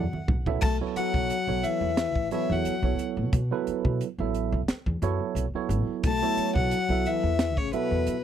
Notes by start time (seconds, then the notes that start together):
Already playing: E2 F#3 F#5
0.12 A4 E5, muted upright bass stroke, high conga
0.28 B1, kick, low conga
0.46 F#3 B3 E4 A4 E5, kick, low conga
0.61 B1 A3 A5, kick, crash
0.81 F#3 B3 E4 A4 C#5
0.95 F#3 F#5, muted upright bass stroke, closed hi-hat
1.14 B1, kick
1.30 closed hi-hat
1.47 B1 F#3 B3 E4 A4 C#5
1.64 E3 E5, closed hi-hat
1.81 E2
1.97 C#5, snare, closed hi-hat
2.15 A1, kick
2.31 E3 F#3 B3 E4 A4 C#5 E5, closed hi-hat
2.50 E2 F#3 F#5
2.65 muted upright bass stroke, closed hi-hat
2.82 B1 F#3 B3 E4 A4 C#5
2.99 muted upright bass stroke, closed hi-hat
3.17 B2
3.33 B2, kick, closed hi-hat
3.51 F#3 B3 E4 A4 B4
3.67 muted upright bass stroke, closed hi-hat
3.85 B2, kick
4.01 closed hi-hat
4.18 A1 F#3 B3 E4 A4 E5
4.34 closed hi-hat
4.52 B1
4.68 A4 B4, muted upright bass stroke, snare, closed hi-hat
4.86 E2, kick
5.02 F#2 F#3 B3 E4 A4 C#5, closed hi-hat
5.19 muted upright bass stroke
5.35 B1, closed hi-hat
5.53 F#3 B3 E4 A4 C#5, muted upright bass stroke
5.69 A1, closed hi-hat
5.87 muted upright bass stroke
6.03 B1 A3 A5, kick, closed hi-hat
6.22 F#3 B3 E4 A4 C#5
6.37 muted upright bass stroke, closed hi-hat
6.55 B1 F#3 F#5, kick
6.71 closed hi-hat
6.89 B1 F#3 B3 E4 A4 E5
7.06 E3 E5, closed hi-hat
7.23 E2
7.39 A4 E5, snare, closed hi-hat
7.57 A1 C#3 C#5, kick
7.73 B2 F#3 B3 E4 A4 B4 E5, closed hi-hat
7.91 E2
8.07 muted upright bass stroke, closed hi-hat